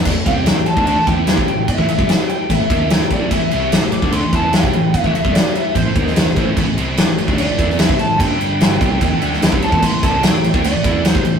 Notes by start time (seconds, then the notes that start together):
0.05 A1 A2 E3, kick, crash
0.16 A1 A2 E3
0.26 C2 C3 G3 C4 G5, kick, crash
0.46 snare, crash
0.56 A1 A2 E3
0.66 A1 A2 E3 A5, crash
0.76 D2 D3 A3 D4, kick
0.86 A5, crash
0.96 A1 A2 E3
1.07 E2 E3 B3 E4 G5, kick, crash
1.27 snare, crash
1.37 C2 C3 G3, kick
1.47 A1 A2 E3, crash
1.68 E5, kick, crash
1.78 A1 A2 E3, kick
1.87 A1 A2 E3 E5, crash
1.98 C2 C3 G3, kick
2.09 muted distorted electric guitar stroke, snare, crash
2.29 G5, crash
2.50 A1 A2 E3 E5, kick, crash
2.59 A1 A2 E3
2.70 D#2 D#3 A#3 D#4, kick, crash
2.90 G5, snare, crash
3.01 A1 A2 E3
3.10 A1 A2 E3 A3 D5, kick, crash
3.31 A1 A2 E3 E5, kick, crash
3.42 A1 A2 E3
3.51 C2 C3 G3 C4, crash
3.72 snare, crash
3.82 A1 A2 E3
3.92 A1 A2 E3 D6, crash
4.02 D2 D3 A3 D4, kick
4.12 C6, crash
4.24 A1 A2 E3
4.33 E2 E3 B3 E4 A5, kick, crash
4.53 G5, snare, crash
4.63 C2 C3 G3, kick
4.73 A1 A2 E3, crash
4.94 kick, crash
5.01 A1 A2 E5, kick
5.06 E3
5.15 A1 A2 E3 E5, crash
5.25 C2 C3 G3, kick
5.34 D5, muted distorted electric guitar stroke, snare, crash
5.54 E5, crash
5.75 A1 A2 E3 C5, kick, crash
5.85 A1 A2 E3
5.95 D#2 D#3 A#3 D#4, kick, crash
6.07 snare
6.16 snare, crash
6.26 A1 A2 E3
6.36 A1 A2 E3 A3, kick, crash
6.57 A1 A2 E3, kick, crash
6.66 A1 A2 E3
6.76 C2 C3 G3 C4, crash
6.97 snare, crash
7.07 A1 A2 E3
7.18 A1 A2 E3, crash
7.27 D2 D3 A3 D4, kick
7.38 D5, crash
7.47 A1 A2 E3
7.58 E2 E3 B3 E4, kick, crash
7.70 snare
7.79 E5, snare, crash
7.89 C2 C3 G3, kick
7.99 A1 A2 E3 A5, crash
8.18 G1 G2 D3 G3 G5, kick, crash
8.41 crash
8.61 snare, crash
8.80 C2 C3 G3 C4, kick, crash
9.01 D#2 D#3 A#3, kick, crash
9.11 A1 A2 E3
9.21 D2 D3 A3 D4, crash
9.33 snare
9.41 D#2 D#3 A#3, snare, crash
9.51 C2 C3 G3 C4, kick
9.62 A5, crash
9.71 E2 E3 B3, kick
9.82 A1 A2 E3 C6, kick, crash
9.93 A1 A2 E3
10.03 C2 C3 G3 C4 A5, kick, crash
10.23 G5, snare, crash
10.33 A1 A2 E3
10.43 A1 A2 E3, crash
10.54 D2 D3 A3 D4, kick
10.64 D5, crash
10.74 A1 A2 E3
10.84 E2 E3 B3 E4, kick, crash
11.05 C5, snare, crash
11.15 C2 C3 G3, kick
11.25 A1 A2 E3, crash